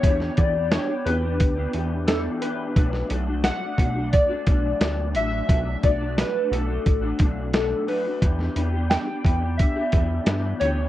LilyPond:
<<
  \new Staff \with { instrumentName = "Synth keys" } { \time 4/4 \key b \minor \tempo 4 = 88 cis''8 d''8 cis''8 b'4. a'8 b'8~ | b'8 r8 fis''4 d''4. e''8~ | e''8 d''8 b'8 a'4. a'8 b'8~ | b'8 r8 g''4 e''4. cis''8 | }
  \new Staff \with { instrumentName = "Clean electric guitar" } { \time 4/4 \key b \minor <e b d' g'>8 <e b d' g'>16 <b d' g'>16 <e b d' g'>16 <b d' g'>16 <e b d' g'>16 <b d' g'>8 <b d' g'>16 <e b d' g'>8 <e b d' g'>8 <e b d' g'>8 | <b, fis a d' fis'>8 <fis a d' fis'>16 <a d' fis'>16 <b, fis a d' fis'>16 <a d' fis'>16 <fis a d' fis'>16 <a d' fis'>8 <a d' fis'>16 <fis a d' fis'>8 <b, fis a d' fis'>8 <fis a d' fis'>8 | <b, fis a d' fis'>8 <fis a d' fis'>16 <a d' fis'>16 <b, fis a d' fis'>16 <a d' fis'>16 <fis a d' fis'>16 <a d' fis'>8 <a d' fis'>16 <fis a d' fis'>8 <b, fis a d' fis'>8 <fis a d' fis'>16 <a d' fis'>16 | <e b d' g'>8 <e b d' g'>16 <b d' g'>16 <e b d' g'>16 <b d' g'>16 <e b d' g'>16 <b d' g'>8 <b d' g'>16 <e b d' g'>8 <e b d' g'>8 <e b d' g'>8 | }
  \new Staff \with { instrumentName = "Analog synth bass" } { \clef bass \time 4/4 \key b \minor e,8 e,8. r16 e,8 d,8 e,4 r8 | b,,8 b,,8. r16 b,,8. r16 b,,8 d,8 a,,8 | b,,8 b,,8. r16 b,,8 a,,8 b,,4 r8 | e,8 e,8. r16 e,8. r16 e,8 g,8 d,8 | }
  \new DrumStaff \with { instrumentName = "Drums" } \drummode { \time 4/4 <hh bd>16 sn16 <hh bd>8 <hh sn>8 hh8 <hh bd>8 hh8 <hh sn>8 hh8 | <hh bd>16 sn16 hh8 <hh sn>8 <hh bd>8 <hh bd>8 <hh bd>8 <hh sn>8 hh8 | <hh bd>8 <hh bd>8 <hh sn>8 hh8 <hh bd>8 <hh bd>8 <hh sn>8 hho8 | <hh bd>16 sn16 hh8 <hh sn>8 <hh bd>8 <hh bd>8 <hh bd>8 <hh sn>8 hh8 | }
>>